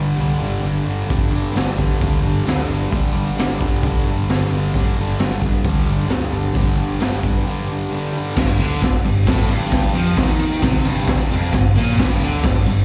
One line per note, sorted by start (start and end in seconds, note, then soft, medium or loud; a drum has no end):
0.00 0.11 G1 medium
0.00 0.16 G2 medium
0.00 0.18 D3 medium
0.00 0.21 G3 medium
0.17 0.33 C2 medium
0.17 0.62 G2 medium
0.17 0.42 D3 medium
0.21 0.39 G3 medium
0.39 0.56 G1 medium
0.39 0.67 G3 medium
0.44 0.64 D3 medium
0.63 0.79 G1 medium
0.63 1.07 G2 medium
0.63 0.89 D3 medium
0.67 0.85 G3 loud
0.85 1.02 G1 medium
0.85 1.12 G3 medium
0.90 1.09 D3 medium
1.07 1.25 G1 medium
1.07 1.52 G2 medium
1.07 1.35 D3 medium
1.07 kick loud
1.07 open hi-hat soft
1.12 1.31 G3 medium
1.31 1.47 G1 medium
1.31 1.57 G3 medium
1.36 1.55 D3 medium
1.53 1.86 G1 medium
1.53 1.81 G2 medium
1.53 1.77 D3 medium
1.53 open hi-hat medium
1.53 tambourine medium
1.57 1.75 G3 medium
1.57 snare loud
1.76 2.01 D3 medium
1.76 2.03 G3 medium
1.76 kick medium
1.81 1.99 G2 medium
1.99 2.17 D2 medium
1.99 2.44 G2 medium
1.99 2.25 D3 medium
1.99 kick loud
1.99 open hi-hat medium
2.04 2.22 G3 medium
2.22 2.39 G1 medium
2.22 2.49 G3 medium
2.27 2.46 D3 medium
2.45 2.61 D2 medium
2.45 2.90 G2 medium
2.45 2.72 D3 medium
2.45 snare loud
2.45 open hi-hat medium
2.45 tambourine medium
2.49 2.68 G3 loud
2.68 2.83 G1 medium
2.68 2.95 G3 medium
2.73 2.92 D3 medium
2.91 3.08 G1 medium
2.91 3.36 G2 loud
2.91 3.16 D3 medium
2.91 kick loud
2.91 open hi-hat medium
2.96 3.12 G3 loud
3.13 3.30 G1 medium
3.13 3.40 G3 medium
3.17 3.38 D3 medium
3.36 3.52 G1 medium
3.36 3.63 G2 medium
3.36 3.61 D3 medium
3.36 snare loud
3.36 open hi-hat medium
3.36 tambourine medium
3.40 3.58 G3 medium
3.59 3.76 G1 medium
3.59 3.84 D3 medium
3.59 3.87 G3 medium
3.59 kick medium
3.64 3.82 G2 medium
3.82 3.98 C2 medium
3.82 4.29 G2 medium
3.82 4.10 D3 medium
3.82 kick loud
3.82 open hi-hat medium
3.87 4.06 G3 medium
4.05 4.20 G1 medium
4.05 4.33 G3 medium
4.11 4.30 D3 medium
4.28 4.44 G1 medium
4.28 4.74 G2 medium
4.28 4.56 D3 loud
4.28 snare loud
4.28 open hi-hat soft
4.28 tambourine medium
4.33 4.52 G3 loud
4.51 4.66 G1 medium
4.51 4.78 G3 medium
4.57 4.76 D3 medium
4.74 4.89 G1 medium
4.74 5.19 G2 medium
4.74 5.00 D3 medium
4.74 kick loud
4.74 open hi-hat medium
4.78 4.96 G3 loud
4.96 5.12 G1 medium
4.96 5.24 G3 medium
5.01 5.21 D3 medium
5.19 5.49 G1 medium
5.19 5.46 G2 medium
5.19 5.43 D3 medium
5.19 snare loud
5.19 open hi-hat medium
5.19 tambourine loud
5.24 5.41 G3 medium
5.41 5.65 D3 medium
5.41 5.68 G3 medium
5.41 kick medium
5.46 5.64 G2 medium
5.64 5.80 D2 medium
5.64 6.07 G2 medium
5.64 5.90 D3 medium
5.64 kick loud
5.64 open hi-hat medium
5.69 5.86 G3 medium
5.87 6.03 G1 medium
5.87 6.11 G3 medium
5.92 6.08 D3 medium
6.07 6.25 D2 medium
6.07 6.54 G2 loud
6.07 6.35 D3 loud
6.07 snare loud
6.07 open hi-hat medium
6.07 tambourine medium
6.12 6.32 G3 loud
6.32 6.48 G1 medium
6.32 6.58 G3 medium
6.37 6.55 D3 medium
6.54 6.70 G1 medium
6.54 6.98 G2 medium
6.54 6.81 D3 loud
6.54 kick loud
6.54 open hi-hat medium
6.59 6.76 G3 medium
6.77 6.93 G1 medium
6.77 7.03 G3 medium
6.82 7.00 D3 medium
6.99 7.15 G1 medium
6.99 7.25 G2 medium
6.99 7.23 D3 medium
6.99 snare loud
6.99 open hi-hat medium
6.99 tambourine medium
7.04 7.20 G3 medium
7.22 7.38 G1 medium
7.22 7.46 D3 medium
7.22 7.48 G3 medium
7.22 kick medium
7.26 7.44 G2 medium
7.45 7.89 G2 medium
7.45 7.71 D3 medium
7.50 7.66 G3 medium
7.68 7.94 G3 medium
7.72 7.92 D3 medium
7.90 8.35 G2 medium
7.90 8.16 D3 loud
7.95 8.12 G3 loud
8.13 8.35 G3 medium
8.18 8.37 D3 medium
8.36 8.58 G1 medium
8.36 8.58 G2 loud
8.36 kick loud
8.36 snare loud
8.36 crash loud
8.59 8.80 D2 medium
8.59 8.81 D3 loud
8.59 ride medium
8.82 9.03 G1 medium
8.82 9.00 G2 medium
8.82 kick loud
8.82 snare loud
8.82 ride loud
8.82 tambourine loud
9.04 9.25 G1 medium
9.04 9.23 G2 medium
9.04 ride medium
9.27 9.48 A1 loud
9.27 9.49 A2 loud
9.27 kick loud
9.27 snare loud
9.27 ride medium
9.49 9.91 G1 medium
9.49 9.95 G2 loud
9.49 ride medium
9.70 kick loud
9.70 snare loud
9.70 ride loud
9.70 tambourine medium
9.93 10.15 F2 loud
9.93 10.17 F3 loud
9.93 ride medium
10.17 10.59 D#2 loud
10.17 10.62 D#3 loud
10.17 kick loud
10.17 snare loud
10.17 ride loud
10.39 ride medium
10.62 10.84 C2 medium
10.62 10.85 C3 loud
10.62 kick loud
10.62 snare loud
10.62 ride loud
10.62 tambourine loud
10.85 11.27 G1 loud
10.85 11.30 G2 loud
10.85 ride medium
11.07 kick loud
11.07 snare loud
11.07 ride loud
11.31 11.52 F1 medium
11.31 11.53 F2 loud
11.31 ride medium
11.53 11.74 G1 medium
11.53 11.72 G2 medium
11.53 kick loud
11.53 snare loud
11.53 ride medium
11.53 tambourine medium
11.75 11.97 A#1 medium
11.75 11.98 A#2 loud
11.75 ride medium
11.98 12.19 G1 medium
11.98 12.21 G2 loud
11.98 kick loud
11.98 snare loud
11.98 crash loud
12.20 12.41 D2 medium
12.20 12.44 D3 loud
12.20 ride medium
12.43 12.65 G1 medium
12.43 12.63 G2 medium
12.43 kick loud
12.43 snare loud
12.43 ride loud
12.43 tambourine medium
12.66 12.85 G1 medium
12.66 12.85 G2 medium
12.66 ride medium